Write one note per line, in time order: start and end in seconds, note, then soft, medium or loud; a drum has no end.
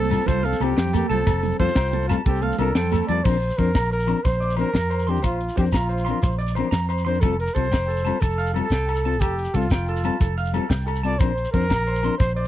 0.00 0.16 C2 medium
0.00 0.29 C4 medium
0.00 0.29 A4 loud
0.00 shekere soft
0.10 0.21 G3 medium
0.10 0.22 C4 medium
0.10 0.22 F4 medium
0.10 0.22 A4 medium
0.10 0.23 A5 medium
0.10 closed hi-hat medium
0.10 low agogo medium
0.10 shekere medium
0.21 shekere soft
0.26 0.53 C2 medium
0.26 0.47 F4 medium
0.26 0.40 A4 medium
0.26 0.47 C5 medium
0.26 kick medium
0.26 snare soft
0.26 closed hi-hat medium
0.26 muted conga medium
0.26 low conga medium
0.26 shekere soft
0.43 0.62 C4 medium
0.43 0.65 A4 medium
0.43 0.56 F5 medium
0.43 closed hi-hat soft
0.43 high conga loud
0.53 low conga medium
0.53 shekere medium
0.60 0.73 C2 medium
0.60 0.71 G3 medium
0.60 0.94 C4 medium
0.60 0.72 C4 medium
0.60 0.72 F4 medium
0.60 0.95 G4 medium
0.60 0.73 A4 medium
0.60 closed hi-hat soft
0.60 muted conga loud
0.60 low agogo medium
0.65 0.73 A4 medium
0.77 1.02 F2 medium
0.77 0.89 G5 medium
0.77 snare medium
0.77 closed hi-hat medium
0.77 shekere soft
0.85 low conga medium
0.93 1.09 A#3 medium
0.93 1.08 G4 medium
0.93 1.06 A4 medium
0.93 closed hi-hat soft
0.93 muted conga medium
0.93 high conga medium
0.93 low agogo medium
0.93 shekere medium
1.03 low conga soft
1.09 1.22 C2 medium
1.09 1.21 G3 medium
1.09 1.57 C4 medium
1.09 1.21 C4 medium
1.09 1.56 A4 medium
1.09 1.22 A5 medium
1.09 closed hi-hat soft
1.09 low conga medium
1.13 1.22 F4 medium
1.13 1.22 A4 medium
1.26 1.52 F1 medium
1.26 1.39 A4 medium
1.26 kick medium
1.26 closed hi-hat medium
1.26 muted conga medium
1.26 low agogo medium
1.26 shekere medium
1.36 low conga soft
1.43 closed hi-hat soft
1.43 high conga medium
1.43 low conga medium
1.43 shekere soft
1.52 shekere soft
1.59 1.66 F2 medium
1.59 1.70 G3 medium
1.59 1.70 C4 medium
1.59 2.07 F4 medium
1.59 1.71 F4 medium
1.59 1.72 A4 medium
1.59 1.71 A4 medium
1.59 2.06 C5 loud
1.59 kick medium
1.59 closed hi-hat soft
1.59 muted conga medium
1.59 low conga soft
1.68 low conga medium
1.68 shekere medium
1.75 2.14 C2 medium
1.75 1.89 G5 medium
1.75 kick medium
1.75 snare medium
1.75 closed hi-hat medium
1.75 low agogo medium
1.86 shekere soft
1.92 2.06 A4 medium
1.92 closed hi-hat soft
1.92 muted conga medium
1.92 low conga medium
2.02 low conga soft
2.02 shekere soft
2.08 2.19 G3 medium
2.08 2.18 A3 medium
2.08 2.20 C4 medium
2.08 2.16 F4 medium
2.08 2.21 F4 medium
2.08 2.22 A5 medium
2.08 closed hi-hat soft
2.08 low agogo medium
2.08 shekere medium
2.13 2.21 A4 medium
2.26 2.51 C2 medium
2.26 2.45 C4 medium
2.26 2.44 G4 medium
2.26 2.39 A4 medium
2.26 kick medium
2.26 closed hi-hat medium
2.26 muted conga medium
2.26 low conga medium
2.36 shekere soft
2.42 2.58 C4 medium
2.42 2.58 A4 medium
2.42 2.55 F5 medium
2.42 closed hi-hat soft
2.42 high conga medium
2.51 low conga medium
2.51 shekere medium
2.58 2.71 C2 medium
2.58 2.69 G3 medium
2.58 2.70 C4 medium
2.58 2.74 D4 medium
2.58 2.70 F4 medium
2.58 2.71 A4 medium
2.58 2.70 A4 medium
2.58 2.74 A#4 medium
2.58 closed hi-hat soft
2.58 muted conga medium
2.58 low agogo medium
2.75 3.00 F2 medium
2.75 3.11 C4 medium
2.75 3.06 A4 medium
2.75 2.88 G5 medium
2.75 snare medium
2.75 closed hi-hat medium
2.83 low conga medium
2.83 shekere soft
2.91 3.04 A4 medium
2.91 closed hi-hat medium
2.91 muted conga medium
2.91 high conga medium
2.91 low agogo medium
2.91 shekere medium
3.02 shekere soft
3.08 3.21 F2 medium
3.08 3.19 G3 medium
3.08 3.19 C4 medium
3.08 3.20 F4 medium
3.08 3.26 D5 medium
3.08 3.21 A5 medium
3.08 closed hi-hat medium
3.08 low conga medium
3.13 3.21 A4 medium
3.24 3.50 A#1 medium
3.24 3.35 F3 medium
3.24 3.36 C4 medium
3.24 3.36 D4 medium
3.24 3.36 A#4 medium
3.24 3.60 C5 medium
3.24 3.37 C5 medium
3.24 kick medium
3.24 crash medium
3.24 low agogo medium
3.24 shekere medium
3.42 closed hi-hat soft
3.50 shekere medium
3.58 3.77 F2 medium
3.58 3.68 F3 medium
3.58 3.69 C4 medium
3.58 3.70 D4 medium
3.58 3.91 A#4 medium
3.58 3.70 A#4 medium
3.58 3.71 C5 medium
3.58 kick medium
3.58 closed hi-hat soft
3.58 shekere soft
3.75 4.13 A#1 medium
3.75 3.88 A#5 medium
3.75 kick medium
3.75 snare medium
3.75 closed hi-hat medium
3.75 low agogo medium
3.75 shekere medium
3.91 4.26 A#4 medium
3.91 muted clean electric guitar stroke medium
3.91 closed hi-hat soft
3.91 shekere soft
4.00 shekere medium
4.07 4.17 F3 soft
4.07 4.18 C4 medium
4.07 4.19 D4 medium
4.07 muted clean electric guitar stroke medium
4.07 closed hi-hat soft
4.07 low agogo medium
4.11 4.19 A#4 medium
4.24 4.62 A#1 medium
4.24 4.57 C5 medium
4.24 4.37 C5 medium
4.24 kick medium
4.24 snare soft
4.24 closed hi-hat medium
4.24 shekere medium
4.34 shekere soft
4.40 4.53 D5 medium
4.40 closed hi-hat soft
4.50 shekere medium
4.56 4.67 F3 medium
4.56 4.68 C4 medium
4.56 4.69 D4 medium
4.56 5.11 A#4 medium
4.56 4.70 C5 medium
4.56 closed hi-hat soft
4.56 low agogo medium
4.61 4.69 A#4 medium
4.74 5.23 F2 medium
4.74 4.86 A#5 medium
4.74 snare medium
4.74 closed hi-hat medium
4.74 shekere medium
4.90 5.03 C5 medium
4.90 closed hi-hat soft
4.90 low agogo medium
4.99 shekere medium
5.07 5.17 F3 medium
5.07 5.18 C4 medium
5.07 5.19 D4 medium
5.07 5.24 G4 medium
5.07 5.19 A#4 medium
5.07 5.20 C6 medium
5.07 closed hi-hat soft
5.16 shekere soft
5.22 5.49 A#1 medium
5.22 5.55 F4 medium
5.22 5.36 C5 medium
5.22 kick medium
5.22 closed hi-hat medium
5.22 low agogo medium
5.22 shekere medium
5.41 closed hi-hat soft
5.48 shekere medium
5.57 5.75 F2 medium
5.57 5.67 F3 medium
5.57 5.68 C4 soft
5.57 5.68 D4 medium
5.57 5.65 G4 medium
5.57 5.69 A#4 medium
5.57 5.70 C5 medium
5.57 kick medium
5.57 closed hi-hat soft
5.57 shekere soft
5.65 shekere soft
5.72 6.11 A#1 medium
5.72 6.36 F4 medium
5.72 5.86 A#5 medium
5.72 kick medium
5.72 snare medium
5.72 closed hi-hat medium
5.72 low agogo medium
5.72 shekere medium
5.89 6.02 C5 medium
5.89 closed hi-hat soft
5.89 shekere soft
5.98 shekere medium
6.05 6.17 F3 medium
6.05 6.18 C4 medium
6.05 6.18 C6 medium
6.05 closed hi-hat soft
6.05 low agogo medium
6.05 shekere soft
6.10 6.18 D4 medium
6.10 6.19 A#4 medium
6.23 6.61 A#1 medium
6.23 6.36 C5 medium
6.23 kick medium
6.23 closed hi-hat medium
6.23 shekere medium
6.31 shekere soft
6.39 6.52 D5 medium
6.39 closed hi-hat soft
6.47 shekere medium
6.55 6.67 F3 medium
6.55 6.67 C4 medium
6.55 6.68 D4 medium
6.55 6.68 C5 medium
6.55 closed hi-hat soft
6.55 low agogo medium
6.60 6.68 A#4 medium
6.71 7.24 F2 medium
6.71 6.85 A#5 medium
6.71 snare medium
6.71 closed hi-hat medium
6.71 shekere medium
6.89 7.02 C5 medium
6.89 closed hi-hat soft
6.89 low agogo medium
6.98 shekere medium
7.05 7.16 F3 medium
7.05 7.17 C4 soft
7.05 7.17 D4 medium
7.05 7.22 C5 medium
7.05 7.18 C6 medium
7.05 closed hi-hat soft
7.10 7.18 A#4 medium
7.14 shekere soft
7.21 7.48 F1 medium
7.21 7.34 G3 medium
7.21 7.38 A4 medium
7.21 7.34 A4 medium
7.21 kick medium
7.21 closed hi-hat medium
7.21 low agogo medium
7.21 shekere medium
7.25 7.34 C4 medium
7.25 7.34 F4 medium
7.25 7.35 A4 medium
7.40 7.56 A#4 medium
7.40 closed hi-hat soft
7.47 shekere medium
7.54 7.74 C2 medium
7.54 7.66 G3 medium
7.54 7.66 C4 soft
7.54 7.67 F4 medium
7.54 7.68 A4 medium
7.54 8.22 C5 loud
7.54 kick medium
7.54 closed hi-hat soft
7.54 shekere soft
7.59 7.67 A4 medium
7.64 shekere soft
7.72 8.11 F1 medium
7.72 7.85 G5 medium
7.72 kick medium
7.72 snare medium
7.72 closed hi-hat medium
7.72 low agogo medium
7.72 shekere medium
7.88 8.01 A4 medium
7.88 closed hi-hat soft
7.88 shekere soft
7.97 shekere medium
8.05 8.16 G3 medium
8.05 8.16 C4 medium
8.05 8.17 F4 medium
8.05 8.17 A4 medium
8.05 8.18 A5 medium
8.05 closed hi-hat soft
8.05 low agogo medium
8.05 shekere soft
8.21 8.60 F1 medium
8.21 8.53 A4 medium
8.21 8.34 A4 medium
8.21 kick medium
8.21 closed hi-hat medium
8.21 shekere medium
8.31 shekere soft
8.38 8.51 F5 medium
8.38 closed hi-hat soft
8.46 shekere medium
8.54 8.65 G3 medium
8.54 8.66 C4 medium
8.54 8.66 F4 medium
8.54 9.22 A4 medium
8.54 8.67 A4 medium
8.54 closed hi-hat soft
8.54 low agogo medium
8.58 8.67 A4 medium
8.70 9.22 C2 medium
8.70 8.85 G5 medium
8.70 snare medium
8.70 closed hi-hat medium
8.70 shekere medium
8.89 9.01 A4 medium
8.89 closed hi-hat soft
8.89 low agogo medium
8.96 shekere medium
9.05 9.15 C4 medium
9.05 9.16 F4 medium
9.05 9.16 A4 medium
9.05 9.18 A5 medium
9.05 closed hi-hat soft
9.12 shekere soft
9.20 9.47 F1 medium
9.20 9.58 G4 medium
9.20 9.34 A4 medium
9.20 kick medium
9.20 closed hi-hat medium
9.20 low agogo medium
9.20 shekere medium
9.39 closed hi-hat soft
9.44 shekere medium
9.53 9.73 C2 medium
9.53 9.65 G3 medium
9.53 9.65 C4 medium
9.53 9.72 F4 medium
9.53 9.66 F4 medium
9.53 9.67 A4 medium
9.53 kick medium
9.53 closed hi-hat soft
9.53 shekere soft
9.58 9.66 A4 medium
9.58 shekere soft
9.70 10.09 F1 medium
9.70 10.35 F4 medium
9.70 9.84 G5 medium
9.70 kick medium
9.70 snare medium
9.70 closed hi-hat medium
9.70 low agogo medium
9.70 shekere medium
9.88 10.01 A4 medium
9.88 closed hi-hat soft
9.96 shekere medium
10.04 10.14 G3 medium
10.04 10.15 C4 medium
10.04 10.15 F4 medium
10.04 10.16 A4 medium
10.04 10.17 A5 medium
10.04 closed hi-hat soft
10.04 low agogo medium
10.04 shekere soft
10.20 10.58 F1 medium
10.20 10.34 A4 medium
10.20 kick medium
10.20 snare soft
10.20 closed hi-hat medium
10.20 shekere medium
10.38 10.50 F5 medium
10.38 closed hi-hat soft
10.38 shekere soft
10.45 shekere medium
10.53 10.64 G3 medium
10.53 10.65 C4 medium
10.53 10.65 F4 medium
10.53 10.67 A4 medium
10.53 10.66 A4 medium
10.53 closed hi-hat soft
10.53 low agogo medium
10.53 shekere soft
10.70 11.20 C2 medium
10.70 10.83 G5 medium
10.70 snare medium
10.70 closed hi-hat medium
10.70 shekere medium
10.87 11.00 A4 medium
10.87 closed hi-hat soft
10.87 low agogo medium
10.95 shekere medium
11.04 11.14 G3 soft
11.04 11.14 C4 medium
11.04 11.15 F4 medium
11.04 11.16 A4 medium
11.04 11.21 D5 medium
11.04 11.16 A5 medium
11.04 closed hi-hat soft
11.12 shekere soft
11.19 11.46 A#1 medium
11.19 11.30 F3 medium
11.19 11.31 C4 medium
11.19 11.31 D4 medium
11.19 11.32 A#4 medium
11.19 11.51 C5 medium
11.19 11.33 C5 medium
11.19 kick medium
11.19 closed hi-hat medium
11.19 low agogo medium
11.19 shekere medium
11.38 closed hi-hat soft
11.45 shekere medium
11.52 11.72 F2 medium
11.52 11.64 F3 medium
11.52 11.64 C4 medium
11.52 12.15 A#4 loud
11.52 11.66 C5 medium
11.52 kick medium
11.52 closed hi-hat soft
11.52 shekere soft
11.56 11.65 D4 medium
11.56 11.65 A#4 medium
11.61 shekere soft
11.70 12.08 A#1 medium
11.70 11.82 A#5 medium
11.70 kick medium
11.70 snare medium
11.70 closed hi-hat medium
11.70 low agogo medium
11.70 shekere loud
11.87 12.00 C5 medium
11.87 closed hi-hat soft
11.87 shekere soft
11.95 shekere medium
12.03 12.13 F3 medium
12.03 12.14 C4 medium
12.03 12.14 D4 medium
12.03 12.15 A#4 medium
12.03 12.17 C6 medium
12.03 closed hi-hat soft
12.03 low agogo medium
12.03 shekere soft
12.18 12.48 A#1 medium
12.18 12.34 C5 medium
12.18 12.33 C5 medium
12.18 kick medium
12.18 snare soft
12.18 closed hi-hat medium
12.18 shekere medium
12.29 shekere soft
12.35 12.48 C5 medium
12.35 12.48 D5 medium
12.35 closed hi-hat soft
12.44 shekere medium